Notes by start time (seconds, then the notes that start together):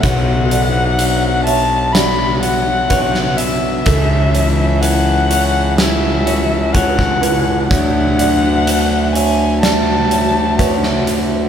Already playing: B4 E5
0.01 B1 B2 B3 C#5 F#5, kick, closed hi-hat
0.51 F#3 D5, closed hi-hat
0.99 D4, closed hi-hat
1.44 C#5 E5 A5, closed hi-hat
1.93 D4 D5 B5, snare, closed hi-hat
2.40 F#4 C#5 F#5, closed hi-hat
2.90 B4 C#5, kick, closed hi-hat
3.15 snare
3.37 D4 E5, closed hi-hat
3.86 C#2 C#3 C#4 A4 E5 G#5, kick, closed hi-hat
4.34 E3 C#5, closed hi-hat
4.81 E4 F#5, closed hi-hat
5.30 C#5, closed hi-hat
5.77 E4 E5 F#5, snare, closed hi-hat
6.26 F#4 C#5, closed hi-hat
6.73 C#5 F#5, kick, closed hi-hat
6.99 kick, snare
7.22 E4 B4, closed hi-hat
7.69 D2 D3 D4 F#4 C#5 E5 F#5, kick, closed hi-hat
8.18 F#3 D5, closed hi-hat
8.66 D4, closed hi-hat
9.13 C#5 E5 G#5, closed hi-hat
9.62 D4 D5 F#5 A5, snare, closed hi-hat
10.10 F#4 C#5, closed hi-hat
10.59 B4 C#5, kick, closed hi-hat
10.83 snare
11.07 D4, closed hi-hat